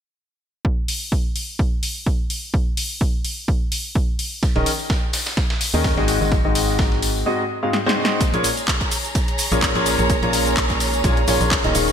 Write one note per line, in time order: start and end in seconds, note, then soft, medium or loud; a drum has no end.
0.65 kick loud
0.88 open hi-hat medium
1.12 kick loud
1.36 open hi-hat medium
1.59 kick loud
1.83 open hi-hat loud
2.06 kick loud
2.30 open hi-hat medium
2.54 kick loud
2.77 open hi-hat loud
3.01 kick loud
3.25 open hi-hat medium
3.48 kick loud
3.72 open hi-hat loud
3.95 kick loud
4.19 open hi-hat medium
4.43 kick loud
4.43 ride medium
4.43 tambourine soft
4.56 4.66 D#1 medium
4.56 4.68 D#3 medium
4.56 4.68 C#4 medium
4.56 4.68 D#4 medium
4.56 4.68 G#4 medium
4.56 4.68 A#4 medium
4.56 4.68 D#5 medium
4.56 ride soft
4.66 open hi-hat loud
4.66 ride medium
4.66 tambourine medium
4.79 tambourine medium
4.90 kick loud
4.90 snare loud
4.90 ride medium
4.90 tambourine soft
5.13 snare loud
5.13 open hi-hat medium
5.13 ride medium
5.13 tambourine loud
5.26 snare loud
5.26 ride medium
5.26 tambourine medium
5.37 kick loud
5.37 snare loud
5.37 ride medium
5.37 tambourine soft
5.50 snare loud
5.50 ride medium
5.61 open hi-hat loud
5.61 ride medium
5.61 tambourine medium
5.74 5.95 D#2 medium
5.74 5.94 D#3 medium
5.74 5.94 C#4 medium
5.74 5.94 D#4 medium
5.74 5.94 G#4 medium
5.74 5.94 A#4 medium
5.74 5.94 D#5 loud
5.74 tambourine soft
5.84 kick loud
5.84 snare loud
5.84 ride medium
5.84 tambourine soft
5.97 6.18 G#1 loud
5.97 6.18 G#2 loud
5.97 6.18 C4 medium
5.97 6.18 D#4 medium
5.97 6.18 F#4 medium
5.97 6.18 G#4 medium
5.97 6.18 D#5 loud
5.97 snare soft
6.08 open hi-hat medium
6.08 ride medium
6.08 tambourine loud
6.21 6.42 G#1 medium
6.21 6.34 G#2 medium
6.21 6.34 C4 medium
6.21 6.34 D#4 medium
6.21 6.34 F#4 medium
6.21 6.34 G#4 medium
6.21 6.34 D#5 medium
6.21 tambourine soft
6.32 kick loud
6.32 ride medium
6.45 7.24 G#1 medium
6.45 7.24 G#2 medium
6.45 7.24 C4 medium
6.45 7.24 D#4 medium
6.45 7.24 F#4 medium
6.45 7.24 G#4 medium
6.45 7.24 D#5 medium
6.55 open hi-hat loud
6.55 ride medium
6.55 tambourine medium
6.68 snare soft
6.68 tambourine soft
6.78 kick loud
6.78 snare loud
6.78 ride medium
6.78 tambourine soft
6.92 snare soft
7.02 open hi-hat medium
7.02 ride medium
7.02 tambourine medium
7.16 tambourine medium
7.26 7.41 G#2 medium
7.26 7.41 C4 medium
7.26 7.41 D#4 medium
7.26 7.41 F#4 medium
7.26 7.41 G#4 medium
7.26 7.41 D#5 medium
7.63 7.76 G#2 medium
7.63 7.75 C4 medium
7.63 7.75 D#4 medium
7.63 7.76 F#4 medium
7.63 7.75 G#4 medium
7.63 7.75 F5 medium
7.73 snare medium
7.86 7.95 G#2 loud
7.86 7.95 C4 medium
7.86 7.95 D#4 medium
7.86 7.95 F#4 medium
7.86 7.95 G#4 medium
7.86 7.95 C5 loud
7.86 snare medium
7.97 8.19 C4 loud
7.97 8.19 D#4 medium
7.97 8.19 F#4 medium
7.97 8.19 G#4 medium
7.97 8.19 C5 loud
8.05 snare medium
8.21 11.92 D#4 medium
8.21 11.92 G#4 medium
8.21 11.71 C#5 medium
8.21 11.71 A#5 medium
8.21 kick loud
8.21 closed hi-hat medium
8.21 ride medium
8.21 tambourine soft
8.21 cabasa soft
8.34 8.44 A#1 medium
8.34 8.46 A#2 medium
8.34 8.46 A#3 medium
8.34 8.46 C#4 medium
8.34 8.46 F4 medium
8.34 8.46 G#4 medium
8.34 8.46 C#5 loud
8.34 closed hi-hat soft
8.34 ride soft
8.44 open hi-hat loud
8.44 ride medium
8.44 tambourine medium
8.44 cabasa medium
8.49 11.92 G#4 medium
8.57 closed hi-hat soft
8.57 tambourine medium
8.57 cabasa soft
8.68 kick loud
8.68 snare loud
8.68 clap loud
8.68 closed hi-hat medium
8.68 ride medium
8.68 cabasa soft
8.81 kick medium
8.81 closed hi-hat soft
8.91 open hi-hat medium
8.91 ride medium
8.91 tambourine medium
8.91 cabasa medium
9.00 11.92 C#5 medium
9.04 closed hi-hat soft
9.04 tambourine soft
9.04 cabasa soft
9.15 kick loud
9.15 closed hi-hat medium
9.15 ride medium
9.15 tambourine soft
9.15 cabasa soft
9.28 closed hi-hat soft
9.28 ride soft
9.38 open hi-hat loud
9.38 ride medium
9.38 tambourine medium
9.38 cabasa medium
9.52 9.73 A#1 medium
9.52 9.72 A#2 medium
9.52 9.72 A#3 medium
9.52 9.72 C#4 medium
9.52 9.72 F4 medium
9.52 9.72 G#4 medium
9.52 9.72 C#5 loud
9.52 closed hi-hat soft
9.52 tambourine medium
9.52 cabasa soft
9.62 kick loud
9.62 snare loud
9.62 clap loud
9.62 closed hi-hat medium
9.62 ride medium
9.62 tambourine soft
9.62 cabasa soft
9.75 9.96 A#1 loud
9.75 9.96 A#2 loud
9.75 9.96 A#3 medium
9.75 9.96 C#4 medium
9.75 9.96 F4 medium
9.75 9.96 G#4 medium
9.75 9.96 C#5 loud
9.75 snare soft
9.75 closed hi-hat soft
9.86 open hi-hat medium
9.86 ride medium
9.86 tambourine loud
9.86 cabasa medium
9.99 10.20 A#1 medium
9.99 10.12 A#2 medium
9.99 10.12 A#3 medium
9.99 10.12 C#4 medium
9.99 10.12 F4 medium
9.99 10.12 G#4 medium
9.99 10.12 C#5 medium
9.99 closed hi-hat soft
9.99 tambourine medium
9.99 cabasa soft
10.10 kick loud
10.10 closed hi-hat medium
10.10 ride medium
10.10 tambourine soft
10.10 cabasa soft
10.23 11.02 A#1 medium
10.23 11.02 A#2 medium
10.23 11.02 A#3 medium
10.23 11.02 C#4 medium
10.23 11.02 F4 medium
10.23 11.02 G#4 medium
10.23 11.02 C#5 medium
10.23 closed hi-hat soft
10.33 open hi-hat loud
10.33 ride medium
10.33 tambourine medium
10.33 cabasa medium
10.46 snare soft
10.46 closed hi-hat soft
10.46 tambourine medium
10.46 cabasa soft
10.57 kick loud
10.57 snare loud
10.57 clap loud
10.57 closed hi-hat medium
10.57 ride medium
10.57 cabasa soft
10.70 kick medium
10.70 snare soft
10.70 closed hi-hat soft
10.80 open hi-hat medium
10.80 ride medium
10.80 tambourine loud
10.80 cabasa medium
10.93 closed hi-hat soft
10.93 tambourine medium
10.93 cabasa soft
11.04 11.26 A#1 medium
11.04 11.19 A#2 medium
11.04 11.19 A#3 medium
11.04 11.19 C#4 medium
11.04 11.19 F4 medium
11.04 11.19 G#4 medium
11.04 11.19 C#5 medium
11.04 kick loud
11.04 closed hi-hat medium
11.04 ride medium
11.04 tambourine soft
11.04 cabasa soft
11.17 closed hi-hat soft
11.28 11.38 A#1 medium
11.28 11.39 A#2 medium
11.28 11.39 A#3 medium
11.28 11.39 C#4 medium
11.28 11.39 F4 medium
11.28 11.39 G#4 medium
11.28 11.39 C#5 medium
11.28 open hi-hat loud
11.28 ride medium
11.28 tambourine medium
11.28 cabasa medium
11.41 11.62 A#1 medium
11.41 11.53 A#2 medium
11.41 11.53 A#3 medium
11.41 11.53 C#4 medium
11.41 11.53 F4 medium
11.41 11.53 G#4 medium
11.41 11.53 C#5 medium
11.41 closed hi-hat soft
11.41 tambourine medium
11.41 cabasa soft
11.51 kick loud
11.51 snare loud
11.51 clap loud
11.51 closed hi-hat medium
11.51 ride medium
11.51 cabasa soft
11.64 11.73 D#1 medium
11.64 11.73 D#3 medium
11.64 11.73 A#3 medium
11.64 11.73 C#4 medium
11.64 11.73 F4 medium
11.64 11.73 G#4 medium
11.64 11.73 D#5 loud
11.64 snare soft
11.64 closed hi-hat soft
11.75 11.92 D#1 medium
11.75 11.92 D#3 medium
11.75 11.92 C#4 medium
11.75 11.92 D#4 medium
11.75 11.92 G#4 medium
11.75 11.92 A#4 medium
11.75 11.92 D#5 medium
11.75 11.92 F5 medium
11.75 11.92 C#6 medium
11.75 open hi-hat medium
11.75 ride medium
11.75 tambourine medium
11.75 cabasa medium
11.88 closed hi-hat soft
11.88 tambourine soft
11.88 cabasa soft